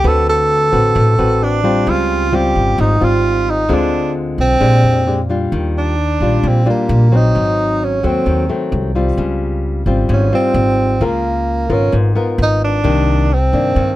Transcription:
0.04 upright bass D2, nylon-string guitar D3 C4 F#4 B4, tenor saxophone A4
0.29 tenor saxophone A4
0.72 upright bass A1, nylon-string guitar C4 F#4 B4
0.95 upright bass A1, nylon-string guitar A2
1.18 upright bass A1, nylon-string guitar C4 F#4 B4
1.44 tenor saxophone D4
1.64 nylon-string guitar G3 C4 F4
1.86 upright bass C#2, nylon-string guitar C#3, tenor saxophone F4
2.32 nylon-string guitar G3 C4 F4, tenor saxophone G4
2.56 upright bass G#1
2.78 upright bass G#1, nylon-string guitar G#2, tenor saxophone D#4
3.01 upright bass G#1, nylon-string guitar G3 C4 F4, tenor saxophone F4
3.50 tenor saxophone D#4
3.69 upright bass D2, nylon-string guitar D3 G#3 C4 F4
3.73 tenor saxophone D4
4.38 upright bass B1, tenor saxophone C4
4.60 upright bass A#1, nylon-string guitar A#2 G#3 D4 G4
4.84 upright bass F2
5.07 nylon-string guitar G#3 D4 G4
5.29 nylon-string guitar G3 D4 F4
5.52 upright bass D#2, nylon-string guitar D#3
5.78 tenor saxophone D4
6.20 upright bass A#1, nylon-string guitar G3 D4 F4
6.43 upright bass A#1, nylon-string guitar A#2
6.48 tenor saxophone C4
6.66 nylon-string guitar G3 D4 F4, tenor saxophone A#3
6.89 upright bass A#1
7.12 nylon-string guitar F#3 C4
7.16 tenor saxophone D#4
7.35 upright bass G#1, nylon-string guitar G#2
7.84 tenor saxophone C#4
8.03 upright bass D#2, nylon-string guitar F#3 A3 C4, tenor saxophone C4
8.26 upright bass D#2, nylon-string guitar D#3
8.49 nylon-string guitar F#3 A3 C4
8.72 upright bass C2
8.95 nylon-string guitar G3 C4 F4
9.17 upright bass C#2, nylon-string guitar C#3
9.86 upright bass G#1, nylon-string guitar G3 C4 F4
10.09 upright bass G#1, nylon-string guitar G#2
10.13 tenor saxophone C#4
10.32 nylon-string guitar G3 C4 F4, tenor saxophone C4
10.54 upright bass G#1
11.01 upright bass C#2, nylon-string guitar C#3 F4 A#4, tenor saxophone A#3
11.69 upright bass G#1, nylon-string guitar B3 F4 A#4, tenor saxophone C#4
11.92 upright bass G#1, nylon-string guitar G#2
12.15 nylon-string guitar B3 F4 A#4
12.38 upright bass G#1
12.43 tenor saxophone D#4
12.64 tenor saxophone D4
12.84 upright bass C2, nylon-string guitar C3 D#3 A#3 D4
13.34 tenor saxophone C4
13.53 upright bass G2, nylon-string guitar D#3 A#3 D4
13.76 upright bass G2, nylon-string guitar G2

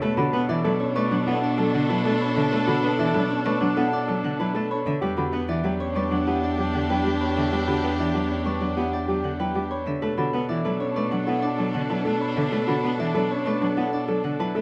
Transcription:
Already playing: harp C#5 D5 F#5
0.01 cello B2 A3, clarinet D4, violin section D4 A4, grand piano A4, harp B4
0.17 cello D3, grand piano F#4, harp A4, celesta B5
0.33 cello B3, grand piano B4, harp F#5
0.49 cello E3, grand piano E4, harp D5, celesta E5
0.64 cello F#3, grand piano A4, harp B4
0.80 grand piano C#4, harp C#5
0.95 cello A3, grand piano B4, harp D5, celesta C#6
1.11 cello F#3, grand piano D4, harp F#5
1.26 cello B3, grand piano E4, harp A4, celesta F#5
1.42 grand piano D4, harp D5
1.58 cello F#3, grand piano A4, harp A4
1.74 cello D3, harp F#5
1.89 cello F#3, grand piano E4, harp B4, celesta A5
2.05 cello A3, grand piano A4, harp A4
2.21 harp C#5, celesta B5
2.36 cello D3, harp E5
2.52 cello A3, grand piano A4, harp B4
2.67 cello D3, grand piano F#4, harp A4, celesta B5
2.83 cello B3, grand piano B4, harp F#5
2.99 cello E3, grand piano E4, harp D5, celesta E5
3.14 cello F#3, grand piano A4, harp B4
3.30 grand piano C#4, harp C#5
3.45 cello A3, grand piano B4, harp D5, celesta C#6
3.61 cello F#3, grand piano D4, harp F#5
3.77 cello B3, grand piano E4, harp A4, celesta F#5
3.92 grand piano D4, harp D5
4.08 cello F#3, grand piano A4, harp A4
4.24 cello D3, harp F#5
4.39 cello F#3, grand piano E4, harp B4, celesta A5
4.55 cello A3, grand piano A4, harp A4
4.71 harp C#5, celesta B5
4.86 cello D3, harp E5
5.01 cello E2 G3, clarinet D4, violin section D4 G4, grand piano G4, harp B4
5.17 cello D3, grand piano F#4, harp G4, celesta B5
5.33 cello B3, grand piano B4, harp F#5
5.48 cello E3, grand piano E4, harp D5, celesta E5
5.64 cello F#3, grand piano G4, harp B4
5.80 grand piano C#4, harp C#5
5.95 cello G3, grand piano B4, harp D5, celesta C#6
6.11 cello F#3, grand piano D4, harp F#5
6.27 cello B3, grand piano E4, harp G4, celesta F#5
6.43 grand piano D4, harp D5
6.58 cello F#3, grand piano G4, harp G4
6.74 cello D3, harp F#5
6.89 cello F#3, grand piano E4, harp B4, celesta G5
7.05 cello G3, grand piano G4, harp G4
7.21 harp C#5, celesta B5
7.37 cello D3, grand piano D4, harp E5
7.52 cello G3, grand piano G4, harp B4
7.67 cello D3, grand piano F#4, harp G4, celesta B5
7.83 cello B3, grand piano B4, harp F#5
7.99 cello E3, grand piano E4, harp D5, celesta E5
8.14 cello F#3, grand piano G4, harp B4
8.30 grand piano C#4, harp C#5
8.45 cello G3, grand piano B4, harp D5, celesta C#6
8.61 cello F#3, grand piano D4, harp F#5
8.77 cello B3, grand piano E4, harp G4, celesta F#5
8.93 grand piano D4, harp D5
9.08 cello F#3, harp G4, grand piano G4
9.23 cello D3, harp F#5
9.39 cello F#3, grand piano E4, harp B4, celesta G5
9.55 cello G3, harp G4, grand piano G4
9.71 harp C#5, celesta B5
9.86 cello D3, grand piano D4, harp E5
10.02 cello B2 A3, clarinet D4, violin section D4 A4, grand piano A4, harp B4
10.17 cello D3, grand piano F#4, harp A4, celesta B5
10.33 cello B3, grand piano B4, harp F#5
10.49 cello E3, grand piano E4, harp D5, celesta E5
10.65 cello F#3, grand piano A4, harp B4
10.80 grand piano C#4, harp C#5
10.96 cello A3, grand piano B4, harp D5, celesta C#6
11.11 cello F#3, grand piano D4, harp F#5
11.27 cello B3, grand piano E4, harp A4, celesta F#5
11.42 grand piano D4, harp D5
11.58 cello F#3, harp A4, grand piano A4
11.74 cello D3, harp F#5
11.89 cello F#3, grand piano E4, harp B4, celesta A5
12.05 cello A3, grand piano A4, harp A4
12.21 harp C#5, celesta B5
12.36 cello D3, grand piano D4, harp E5
12.52 cello A3, grand piano A4, harp B4
12.67 cello D3, grand piano F#4, harp A4, celesta B5
12.83 cello B3, grand piano B4, harp F#5
12.99 cello E3, grand piano E4, harp D5, celesta E5
13.15 cello F#3, grand piano A4, harp B4
13.30 grand piano C#4, harp C#5
13.46 cello A3, grand piano B4, harp D5, celesta C#6
13.61 cello F#3, grand piano D4, harp F#5
13.77 cello B3, grand piano E4, harp A4, celesta F#5
13.93 grand piano D4, harp D5
14.08 cello F#3, harp A4, grand piano A4
14.24 cello D3, harp F#5
14.39 cello F#3, grand piano E4, harp B4, celesta A5
14.55 cello A3, grand piano A4, harp A4

